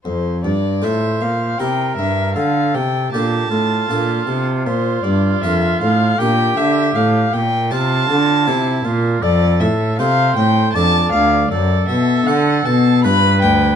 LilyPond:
<<
  \new Staff \with { instrumentName = "Violin" } { \time 3/4 \key f \major \tempo 4 = 78 c''8 d''8 e''8 f''8 g''8 e''8 | f''8 g''8 a''4.~ a''16 r16 | c''8 d''8 e''8 f''8 g''8 e''8 | f''8 g''8 a''4.~ a''16 r16 |
\key d \dorian d''8 e''8 f''8 g''8 a''8 f''8 | d''8 e''8 fis''8 a''8 b''8 g''8 | }
  \new Staff \with { instrumentName = "Oboe" } { \time 3/4 \key f \major r4 c''4 bes'4 | a'4 g'8 f'4. | f'2 g'4~ | g'8 r8 f'4 e'8 f'8 |
\key d \dorian a'4 c''4 d''4 | a'2 b'4 | }
  \new Staff \with { instrumentName = "Harpsichord" } { \time 3/4 \key f \major r4 <f' a' c''>4 <e' g' c''>4 | r4 <d' f' a'>4 <d' f' a'>4 | r4 <d' f' bes'>4 <d' g' bes'>4 | r4 <c' f' c''>4 <c' f' c''>4 |
\key d \dorian r4 <c' f' a'>4 <d' f' a'>4 | r4 <d' a' c''>4 <d' f' b'>4 | }
  \new Staff \with { instrumentName = "Harpsichord" } { \clef bass \time 3/4 \key f \major f,8 g,8 a,8 bes,8 c8 g,8 | d8 c8 bes,8 a,8 bes,8 c8 | bes,8 g,8 f,8 a,8 bes,8 d8 | a,8 bes,8 c8 d8 c8 bes,8 |
\key d \dorian f,8 a,8 c8 a,8 f,8 d,8 | fis,8 b,8 d8 b,8 g,8 d,8 | }
  \new Staff \with { instrumentName = "Cello" } { \clef bass \time 3/4 \key f \major f,8 g,8 a,8 bes,8 c8 g,8 | d8 c8 bes,8 a,8 bes,8 c8 | bes,8 g,8 f,8 a,8 bes,8 d8 | a,8 bes,8 c8 d8 c8 bes,8 |
\key d \dorian f,8 a,8 c8 a,8 f,8 d,8 | fis,8 b,8 d8 b,8 g,8 d,8 | }
>>